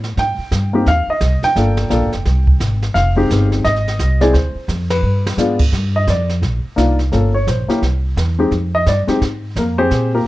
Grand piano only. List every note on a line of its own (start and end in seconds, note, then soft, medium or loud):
0.19 0.90 G5 medium
0.73 0.85 A#3 medium
0.73 0.85 C4 medium
0.73 0.86 D#4 medium
0.73 0.86 G4 medium
0.88 1.09 F5 loud
1.10 1.45 D#5 medium
1.44 2.79 G5 loud
1.56 1.88 A#3 medium
1.56 1.89 D4 medium
1.56 1.90 F4 medium
1.56 1.90 A4 medium
1.90 2.10 A#3 medium
1.90 2.10 D4 medium
1.90 2.10 F4 medium
1.90 2.11 A4 medium
2.94 3.47 F5 loud
3.16 3.62 G#3 medium
3.16 3.62 C4 medium
3.16 3.62 D#4 medium
3.16 3.62 G4 medium
3.65 4.23 D#5 loud
4.21 4.33 G#3 medium
4.21 4.33 C4 medium
4.21 4.33 E4 medium
4.21 4.34 G#4 medium
4.21 4.33 D5 medium
4.33 4.66 C5 medium
4.90 5.35 B4 medium
5.37 5.58 G#3 medium
5.37 5.58 B3 medium
5.37 5.58 D4 medium
5.37 5.58 F4 medium
5.96 6.08 D#5 medium
6.10 6.30 D5 medium
6.76 6.96 A#3 medium
6.76 6.97 D4 medium
6.76 6.97 D#4 medium
6.76 6.97 F4 medium
7.12 7.32 A#3 medium
7.12 7.32 C#4 medium
7.12 7.32 F4 soft
7.12 7.33 A4 medium
7.34 7.47 C#5 medium
7.48 7.69 C5 medium
7.69 7.81 A#3 medium
7.69 7.81 C#4 medium
7.69 7.81 E4 medium
7.69 7.81 G4 medium
8.39 8.51 G#3 medium
8.39 8.51 C4 medium
8.39 8.51 D#4 medium
8.39 8.51 G4 medium
8.75 8.87 D#5 loud
8.89 9.01 D5 medium
9.07 9.20 G#3 medium
9.07 9.20 C4 medium
9.07 9.20 D#4 medium
9.07 9.21 G4 medium
9.58 9.79 A#3 medium
9.58 9.78 A#4 medium
9.78 10.11 C4 medium
9.78 10.11 G4 medium
9.78 10.11 G#4 medium
9.78 10.10 C5 loud
10.14 10.26 A#3 medium
10.14 10.26 F4 medium
10.14 10.27 G4 medium
10.14 10.26 A#4 medium